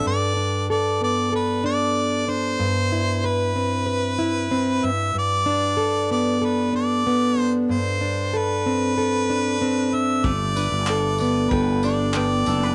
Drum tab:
TB |--------|--------|--------|--------|
CP |--------|--------|--------|--------|
BD |--------|--------|--------|--------|

TB |-x-x-x-x|
CP |--x---x-|
BD |o---o---|